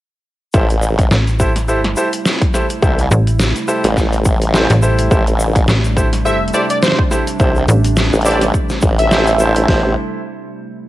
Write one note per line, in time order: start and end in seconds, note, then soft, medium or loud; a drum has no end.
0.53 1.09 A1 loud
0.53 9.64 C3 medium
0.53 9.64 G3 medium
0.53 9.64 A3 medium
0.53 0.64 E4 medium
0.53 5.07 E4 medium
0.53 0.63 G4 medium
0.53 0.64 A4 medium
0.53 0.63 C5 loud
0.53 kick loud
0.53 shaker medium
0.70 closed hi-hat medium
0.70 shaker soft
0.82 shaker loud
0.99 kick loud
0.99 closed hi-hat medium
0.99 shaker soft
1.11 1.70 A1 loud
1.11 snare loud
1.11 shaker medium
1.27 closed hi-hat soft
1.27 shaker soft
1.40 1.49 E4 loud
1.40 1.49 G4 medium
1.40 1.49 A4 medium
1.40 1.49 C5 loud
1.40 kick medium
1.40 shaker loud
1.56 snare soft
1.56 closed hi-hat medium
1.56 shaker soft
1.68 1.95 G#1 loud
1.68 1.78 E4 medium
1.68 1.78 G4 medium
1.68 1.78 A4 medium
1.68 1.78 C5 medium
1.68 shaker medium
1.84 snare medium
1.84 closed hi-hat soft
1.96 2.06 E4 medium
1.96 2.06 G4 medium
1.96 2.06 A4 medium
1.96 2.06 C5 loud
1.96 shaker loud
2.13 closed hi-hat medium
2.13 shaker soft
2.25 snare loud
2.25 shaker medium
2.42 kick loud
2.42 closed hi-hat medium
2.54 2.64 E4 medium
2.54 2.64 G4 medium
2.54 2.64 A4 medium
2.54 2.64 C5 loud
2.54 snare soft
2.54 shaker loud
2.70 closed hi-hat medium
2.70 shaker soft
2.82 3.09 C2 medium
2.82 2.98 E4 medium
2.82 2.98 G4 medium
2.82 2.98 A4 medium
2.82 2.98 C5 medium
2.82 kick loud
2.82 shaker medium
2.99 closed hi-hat medium
2.99 shaker soft
3.11 3.53 A1 loud
3.11 shaker medium
3.27 closed hi-hat medium
3.27 shaker soft
3.40 snare loud
3.40 shaker medium
3.56 closed hi-hat soft
3.56 shaker soft
3.68 3.84 E4 loud
3.68 3.84 G4 medium
3.68 3.84 A4 medium
3.68 3.84 C5 loud
3.68 shaker medium
3.84 4.68 A1 loud
3.84 snare soft
3.84 closed hi-hat medium
3.84 shaker soft
3.97 kick medium
3.97 snare soft
3.97 shaker medium
4.13 closed hi-hat soft
4.13 shaker soft
4.25 kick loud
4.25 shaker loud
4.41 closed hi-hat medium
4.41 shaker soft
4.54 4.69 E4 medium
4.54 4.69 G4 medium
4.54 4.69 A4 medium
4.54 4.69 C5 medium
4.54 snare loud
4.54 shaker medium
4.70 5.09 A1 loud
4.70 closed hi-hat medium
4.70 shaker soft
4.82 5.08 E4 medium
4.82 5.08 G4 medium
4.82 5.08 A4 medium
4.82 5.08 C5 medium
4.82 shaker medium
4.99 closed hi-hat medium
4.99 shaker soft
5.11 5.66 A1 medium
5.11 9.64 D4 medium
5.11 5.21 E4 medium
5.11 5.21 G4 medium
5.11 5.21 A4 medium
5.11 5.21 C5 loud
5.11 kick loud
5.11 shaker medium
5.27 closed hi-hat medium
5.27 shaker soft
5.40 shaker loud
5.56 kick loud
5.56 closed hi-hat medium
5.56 shaker soft
5.68 6.52 A1 loud
5.68 snare loud
5.68 shaker medium
5.84 closed hi-hat soft
5.84 shaker soft
5.97 6.06 E4 medium
5.97 6.06 G4 medium
5.97 6.06 A4 medium
5.97 6.06 C5 loud
5.97 kick medium
5.97 shaker loud
6.13 snare soft
6.13 closed hi-hat medium
6.13 shaker soft
6.25 6.35 E4 medium
6.25 6.35 G4 medium
6.25 6.35 A4 medium
6.25 6.35 C5 medium
6.25 6.44 E5 medium
6.25 shaker medium
6.48 closed hi-hat soft
6.54 6.64 E4 medium
6.54 6.64 G4 medium
6.54 6.64 A4 medium
6.54 6.64 C5 loud
6.54 6.64 D5 medium
6.54 shaker medium
6.70 6.78 D5 medium
6.70 closed hi-hat medium
6.70 shaker soft
6.83 7.01 C5 loud
6.83 snare loud
6.83 shaker medium
6.88 snare loud
6.92 snare medium
6.99 kick loud
7.11 7.21 E4 medium
7.11 7.21 G4 medium
7.11 7.21 A4 medium
7.11 7.21 C5 loud
7.11 snare soft
7.11 shaker loud
7.27 closed hi-hat medium
7.27 shaker soft
7.39 7.66 C2 loud
7.39 7.55 E4 medium
7.39 7.55 G4 medium
7.39 7.55 A4 medium
7.39 7.55 C5 medium
7.39 kick loud
7.39 shaker medium
7.56 shaker soft
7.68 8.10 A1 loud
7.68 closed hi-hat medium
7.68 shaker loud
7.84 closed hi-hat medium
7.84 shaker soft
7.96 snare loud
7.96 shaker medium
8.13 8.52 A1 medium
8.13 closed hi-hat soft
8.13 shaker soft
8.21 closed hi-hat soft
8.25 8.41 E4 loud
8.25 8.41 G4 medium
8.25 8.41 A4 medium
8.25 8.41 C5 loud
8.25 8.44 D5 loud
8.25 shaker loud
8.31 closed hi-hat soft
8.41 snare soft
8.41 closed hi-hat medium
8.41 shaker soft
8.54 kick medium
8.54 shaker medium
8.69 snare soft
8.69 closed hi-hat soft
8.69 shaker soft
8.82 9.66 A1 loud
8.82 kick loud
8.82 shaker loud
8.99 9.68 E5 loud
8.99 closed hi-hat medium
8.99 shaker soft
9.11 9.26 E4 medium
9.11 9.26 G4 medium
9.11 9.26 A4 medium
9.11 9.26 C5 medium
9.11 snare loud
9.11 shaker medium
9.27 closed hi-hat medium
9.27 shaker soft
9.39 9.65 E4 medium
9.39 9.65 G4 medium
9.39 9.65 A4 medium
9.39 9.65 C5 medium
9.39 shaker medium
9.55 closed hi-hat medium
9.55 shaker soft
9.68 9.95 A1 loud
9.68 9.95 C3 medium
9.68 9.95 G3 medium
9.68 9.95 A3 medium
9.68 9.95 E4 medium
9.68 9.90 E4 medium
9.68 9.90 G4 medium
9.68 9.90 A4 medium
9.68 9.90 C5 loud
9.68 kick loud
9.68 snare loud
9.68 open hi-hat medium